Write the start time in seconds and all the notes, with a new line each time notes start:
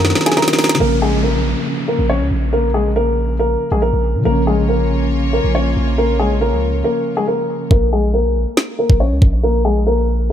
Already playing: F#2 D#3 F#3 A#3 D#4 F#4 A#4 A#5
0.05 snare
0.10 snare
0.15 snare
0.21 snare
0.26 G#4 G#5, snare, closed hi-hat
0.32 snare
0.37 A#4 A#5, snare
0.42 snare
0.48 snare, closed hi-hat
0.53 snare
0.58 snare, open hi-hat
0.64 snare
0.69 snare, closed hi-hat
0.75 C#3 F3, snare
0.80 A#1 A#3 A#4, downlifter
0.86 C#4
1.02 G#3 G#4
1.23 A#3 A#4
1.34 B1
1.45 A#1
1.88 A#3 A#4
1.99 A#1
2.10 C#4 C#5
2.20 C#2
2.31 A#1
2.53 A#3 A#4
2.74 G#3 G#4
2.96 A#3 A#4
3.39 A#3 A#4
3.72 A#1 G#3 G#4
3.82 A#3 A#4
3.93 A#1
4.15 A#2
4.20 C#3 F3
4.25 A#1 A#3 C#4 F4 A#4 C#5
4.31 C#4
4.47 G#3 G#4
4.69 A#3 A#4
5.33 A#3 A#4
5.44 A#1
5.55 C#4 C#5
5.77 A#1
5.98 A#3 A#4
6.19 G#3 G#4
6.41 A#3 A#4
6.52 C#2
6.84 A#3 A#4
7.17 G#3 G#4
7.27 A#3 A#4
7.71 A#1 A#3 A#4, kick
7.93 G#3 G#4
8.14 A#3 A#4
8.25 B1
8.36 A#1
8.57 snare
8.79 A#3 A#4
8.90 A#1, kick
9.00 C#4 C#5
9.11 C#2
9.22 A#1, kick
9.43 A#3 A#4
9.65 G#3 G#4
9.87 A#3 A#4